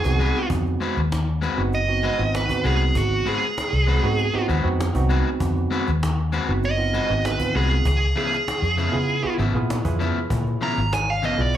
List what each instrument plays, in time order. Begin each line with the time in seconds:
Already playing: lead electric guitar G#4
0.04 fingered electric bass C2, tine electric piano B3 C4 D#4 F#4, cajon bass
0.19 clean electric guitar G#3 C4 F#4 B4, cajon slap
0.50 fingered electric bass F2, cajon bass
0.66 cajon slap
0.80 clean electric guitar G#3 C4 F#4 B4, cajon slap
0.96 fingered electric bass D#2, cajon slap
1.12 cajon slap
1.42 clean electric guitar G#3 C4 F#4 B4, cajon slap
1.57 fingered electric bass F#1, tine electric piano B3 C4 D#4 F#4
1.72 lead electric guitar D#5, cajon slap
1.88 tine electric piano B3 C4 D#4 F#4
2.03 clean electric guitar G#3 C4 F#4 B4, cajon slap
2.18 fingered electric bass G#1, tine electric piano B3 C4 D#4 F4
2.35 lead electric guitar B4, cajon slap
2.49 tine electric piano B3 C4 D#4 F#4, cajon bass
2.64 fingered electric bass C2, clean electric guitar G#3 C4 F#4 B4, lead electric guitar G#4, cajon slap
2.95 fingered electric bass G#1, lead electric guitar F#4, cajon bass
3.25 clean electric guitar G#3 C4 F#4 B4, lead electric guitar G#4, cajon slap
3.58 cajon slap
3.73 fingered electric bass C2, cajon slap
3.87 clean electric guitar G#3 C4 F#4 B4, cajon slap
4.03 fingered electric bass G#2, tine electric piano B3 C4 D#4 F#4
4.18 cajon slap
4.33 tine electric piano B3 C4 D#4 F#4, muted fingered electric bass stroke
4.48 fingered electric bass D#2, clean electric guitar G#3 C4 F#4 B4, cajon slap
4.63 fingered electric bass F2, tine electric piano B3 C4 D#4 F#4
4.80 cajon slap
4.94 fingered electric bass C2, tine electric piano B3 C4 D#4 F#4, cajon bass
5.09 clean electric guitar G#3 C4 F#4 B4, cajon slap
5.40 fingered electric bass F2, cajon bass
5.56 cajon slap
5.71 clean electric guitar G#3 C4 F#4 B4, cajon slap
5.87 fingered electric bass D#2, cajon slap
6.03 cajon slap
6.32 clean electric guitar G#3 C4 F#4 B4, cajon slap
6.48 fingered electric bass F#1, tine electric piano B3 C4 D#4 F#4
6.63 lead electric guitar D#5, cajon slap
6.77 tine electric piano B3 C4 D#4 F4
6.93 clean electric guitar G#3 C4 F#4 B4, cajon slap
7.09 fingered electric bass G#1, tine electric piano B3 C4 D#4 F#4
7.25 lead electric guitar B4, cajon slap
7.39 tine electric piano B3 C4 D#4 F4, cajon bass
7.55 fingered electric bass C2, clean electric guitar G#3 C4 F#4 B4, lead electric guitar G#4
7.85 fingered electric bass C#2, lead electric guitar G#4, cajon bass
8.16 clean electric guitar C#3 F3 B3 E4, lead electric guitar G#4, cajon slap
8.33 cajon slap
8.48 cajon slap
8.62 fingered electric bass F2, cajon slap
8.77 clean electric guitar C#3 F3 B3 E4, cajon slap
8.92 fingered electric bass C#3, tine electric piano B3 E4 F4 G#4
9.08 cajon slap
9.23 tine electric piano B3 E4 F4 G#4, muted fingered electric bass stroke
9.38 fingered electric bass G#1, clean electric guitar C#3 F3 B3 E4, cajon slap
9.54 fingered electric bass A#2, tine electric piano B3 E4 F4 G#4
9.70 cajon slap
9.85 fingered electric bass F2, tine electric piano E4 F4 G#4 B4, cajon bass
9.99 clean electric guitar C#3 F3 B3 E4, cajon slap
10.30 fingered electric bass A#2, cajon bass
10.46 cajon slap
10.61 clean electric guitar C#3 F3 B3 E4, lead electric guitar A#5, cajon slap
10.77 fingered electric bass G#1, cajon slap
10.93 lead electric guitar G#5, cajon slap
11.10 lead electric guitar F5
11.22 clean electric guitar C#3 F3 B3 E4, lead electric guitar D#5, cajon slap
11.38 fingered electric bass B1, tine electric piano B3 E4 F4 G#4, lead electric guitar D5
11.53 cajon slap